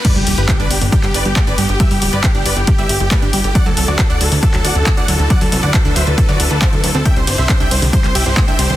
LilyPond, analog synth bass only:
\new Staff \with { instrumentName = "Analog synth bass" } { \clef bass \time 4/4 \key g \major \tempo 4 = 137 r16 g,,16 d,,16 g,,16 r16 g,,16 g,,16 g,,16 r16 g,,16 g,,16 g,,16 r16 g,,16 g,,16 g,,16 | r16 g,,16 d,,16 g,,16 r16 g,,16 g,,16 g,,16 r16 g,,16 g,,16 g,,16 r16 g,,16 g,,16 g,,16 | r16 d,16 c,16 d,16 r16 d,16 d,16 d,16 r16 d,16 d,16 d,16 r16 d,16 d,16 d,16 | r16 d,16 c,16 d,16 r16 d,16 d,16 d,16 r16 d,16 d,16 d,16 r16 d,16 d,16 d,16 |
r16 c,16 g,,16 c,16 r16 c,16 c,16 c,16 r16 c,16 c,16 c,16 r16 c,16 c,16 c,16 | }